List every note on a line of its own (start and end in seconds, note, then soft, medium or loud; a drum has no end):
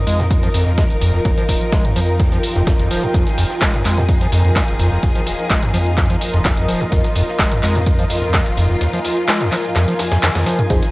0.00 10.91 F3 medium
0.00 10.91 D#4 medium
0.00 10.91 F4 medium
0.00 3.13 A#4 medium
0.00 10.91 A#4 medium
0.00 0.55 D#5 medium
0.07 0.50 F2 medium
0.07 0.21 G#3 medium
0.07 open hi-hat medium
0.19 0.26 F2 medium
0.19 snare soft
0.19 closed hi-hat soft
0.31 kick loud
0.31 closed hi-hat medium
0.31 ride medium
0.43 0.49 F3 medium
0.43 closed hi-hat soft
0.52 0.85 F2 medium
0.52 0.65 F2 medium
0.52 4.33 G5 medium
0.52 open hi-hat loud
0.52 ride medium
0.67 0.73 F2 medium
0.78 0.85 G#3 loud
0.78 kick loud
0.78 snare loud
0.78 closed hi-hat medium
0.78 ride medium
0.90 1.21 D#1 medium
0.90 closed hi-hat soft
1.01 1.12 F2 loud
1.01 open hi-hat medium
1.01 ride medium
1.14 1.20 F2 medium
1.25 1.34 F1 loud
1.25 1.32 D#2 medium
1.25 kick loud
1.25 closed hi-hat medium
1.25 ride medium
1.38 1.44 F3 medium
1.38 closed hi-hat soft
1.49 1.58 D#1 medium
1.49 kick medium
1.49 snare soft
1.49 open hi-hat loud
1.49 ride medium
1.61 closed hi-hat soft
1.72 1.82 F1 medium
1.72 1.86 G#3 loud
1.72 kick loud
1.72 snare loud
1.72 closed hi-hat medium
1.72 ride medium
1.85 1.94 F2 loud
1.85 closed hi-hat soft
1.96 2.39 F2 loud
1.96 2.00 F3 loud
1.96 open hi-hat medium
1.96 ride medium
2.08 closed hi-hat soft
2.20 2.30 F2 loud
2.20 kick loud
2.20 closed hi-hat medium
2.20 ride medium
2.32 2.38 F3 medium
2.32 closed hi-hat soft
2.43 open hi-hat loud
2.43 ride medium
2.56 2.86 F1 loud
2.56 2.62 F2 loud
2.56 snare soft
2.56 closed hi-hat soft
2.67 2.74 F2 medium
2.67 kick loud
2.67 snare loud
2.67 closed hi-hat medium
2.67 ride medium
2.79 2.89 F2 medium
2.79 closed hi-hat soft
2.90 3.00 D#1 loud
2.90 3.04 F3 loud
2.90 open hi-hat medium
2.90 ride medium
3.03 3.07 D#2 loud
3.03 closed hi-hat soft
3.14 3.23 F1 loud
3.14 3.24 F2 medium
3.14 6.91 G#4 medium
3.14 kick loud
3.14 closed hi-hat medium
3.14 ride medium
3.26 snare soft
3.26 closed hi-hat soft
3.38 3.47 D#1 medium
3.38 3.45 F2 loud
3.38 open hi-hat loud
3.38 ride medium
3.50 snare soft
3.61 3.71 F1 medium
3.61 3.75 G#3 loud
3.61 kick loud
3.61 snare loud
3.61 clap loud
3.61 closed hi-hat medium
3.61 ride medium
3.74 3.83 F2 medium
3.74 closed hi-hat soft
3.85 4.28 F2 medium
3.85 3.99 G#3 medium
3.85 clap medium
3.85 open hi-hat medium
3.97 4.04 F2 medium
3.97 snare soft
3.97 closed hi-hat soft
4.08 kick loud
4.08 closed hi-hat medium
4.08 ride medium
4.21 4.27 F3 medium
4.21 closed hi-hat soft
4.30 4.42 F2 medium
4.30 4.63 F2 medium
4.30 8.10 D#5 loud
4.30 open hi-hat loud
4.30 ride medium
4.45 4.51 F2 medium
4.56 4.63 G#3 loud
4.56 kick loud
4.56 snare loud
4.56 clap loud
4.56 closed hi-hat medium
4.56 ride medium
4.68 4.99 D#1 medium
4.68 closed hi-hat soft
4.79 4.90 F2 loud
4.79 open hi-hat medium
4.79 ride medium
4.92 4.98 F2 medium
5.03 5.12 F1 loud
5.03 5.10 D#2 medium
5.03 kick loud
5.03 closed hi-hat medium
5.03 ride medium
5.15 5.22 F3 medium
5.15 closed hi-hat medium
5.27 5.36 D#1 medium
5.27 snare soft
5.27 open hi-hat loud
5.27 ride medium
5.39 closed hi-hat soft
5.50 5.60 F1 medium
5.50 5.64 G#3 loud
5.50 kick loud
5.50 snare loud
5.50 clap loud
5.50 closed hi-hat medium
5.50 ride medium
5.63 5.72 F2 loud
5.63 closed hi-hat medium
5.74 6.17 F2 medium
5.74 5.78 F3 loud
5.74 open hi-hat medium
5.74 ride medium
5.86 closed hi-hat soft
5.97 6.08 F2 loud
5.97 kick loud
5.97 clap medium
5.97 closed hi-hat medium
5.97 ride medium
6.10 6.16 F3 medium
6.10 closed hi-hat medium
6.21 open hi-hat loud
6.21 ride medium
6.34 6.64 F1 loud
6.34 6.40 F2 loud
6.34 snare soft
6.34 closed hi-hat soft
6.45 6.52 F2 medium
6.45 kick loud
6.45 snare loud
6.45 clap loud
6.45 closed hi-hat medium
6.45 ride medium
6.57 6.67 F2 medium
6.57 closed hi-hat medium
6.68 6.78 D#1 loud
6.68 6.82 F3 loud
6.68 open hi-hat medium
6.68 ride medium
6.81 6.85 D#2 loud
6.81 closed hi-hat soft
6.92 7.01 F1 loud
6.92 7.02 F2 medium
6.92 10.69 F4 medium
6.92 kick loud
6.92 closed hi-hat medium
6.92 ride medium
7.04 snare soft
7.04 closed hi-hat medium
7.16 7.25 D#1 medium
7.16 7.23 F2 loud
7.16 open hi-hat loud
7.16 ride medium
7.28 snare soft
7.39 7.49 F1 medium
7.39 7.53 G#3 loud
7.39 kick loud
7.39 snare loud
7.39 clap loud
7.39 closed hi-hat medium
7.39 ride medium
7.52 7.61 F2 medium
7.52 closed hi-hat medium
7.63 8.06 F2 loud
7.63 7.77 G#3 medium
7.63 clap medium
7.63 open hi-hat medium
7.75 7.82 F2 medium
7.75 snare soft
7.75 closed hi-hat soft
7.87 kick loud
7.87 closed hi-hat medium
7.87 ride medium
7.99 8.05 F3 medium
7.99 closed hi-hat medium
8.08 8.41 F2 medium
8.08 8.20 F2 medium
8.08 10.91 G#5 loud
8.08 open hi-hat medium
8.08 ride medium
8.23 8.29 F2 medium
8.34 8.41 G#3 loud
8.34 kick loud
8.34 snare loud
8.34 clap loud
8.34 closed hi-hat medium
8.34 ride medium
8.46 8.77 D#1 medium
8.46 closed hi-hat medium
8.57 8.68 F2 loud
8.57 open hi-hat medium
8.57 ride medium
8.70 8.76 F2 medium
8.81 8.88 D#2 medium
8.81 closed hi-hat medium
8.81 ride medium
8.93 9.00 F3 medium
8.93 closed hi-hat medium
9.05 snare soft
9.05 open hi-hat loud
9.05 ride medium
9.17 closed hi-hat soft
9.28 9.42 G#3 loud
9.28 snare loud
9.28 clap loud
9.28 closed hi-hat medium
9.28 ride medium
9.41 9.50 F2 loud
9.41 closed hi-hat medium
9.52 9.56 F3 loud
9.52 clap medium
9.52 open hi-hat medium
9.52 ride medium
9.64 closed hi-hat soft
9.76 9.86 F2 loud
9.76 snare loud
9.76 clap medium
9.76 closed hi-hat medium
9.76 ride medium
9.88 9.94 F3 medium
9.88 closed hi-hat medium
9.99 snare loud
9.99 open hi-hat loud
9.99 ride medium
10.12 10.18 F2 loud
10.12 snare loud
10.12 closed hi-hat soft
10.12 ride medium
10.23 10.30 F2 medium
10.23 snare loud
10.23 clap loud
10.23 closed hi-hat medium
10.23 high tom medium
10.23 ride medium
10.35 10.44 F2 medium
10.35 snare loud
10.35 closed hi-hat medium
10.35 high tom medium
10.35 ride medium
10.46 10.60 F3 loud
10.46 snare loud
10.46 open hi-hat medium
10.46 ride medium
10.59 10.63 D#2 loud
10.59 closed hi-hat soft
10.59 mid tom medium
10.70 10.79 F1 loud
10.70 10.80 F2 medium
10.70 10.78 D#4 medium
10.70 10.78 F4 medium
10.70 10.78 G#4 medium
10.70 10.91 G#4 medium
10.70 10.78 C5 medium
10.70 kick loud
10.70 closed hi-hat medium
10.70 ride medium
10.82 snare soft
10.82 closed hi-hat medium